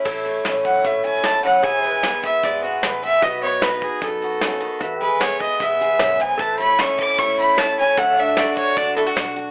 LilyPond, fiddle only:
\new Staff \with { instrumentName = "Fiddle" } { \time 4/4 \key a \major \tempo 4 = 152 r4. fis''8 e''8 gis''8 a''8 fis''8 | gis''4. e''8 d''8 fis'8 b'8 e''8 | dis''8 cis''8 b'8 gis'8 a'2 | r8 b'8 cis''8 dis''8 e''4. gis''8 |
a''8 b''8 cis'''8 d'''8 cis'''8 b''8 a''8 gis''8 | fis''8 e''8 d''8 cis''8 d''8 a'8 r4 | }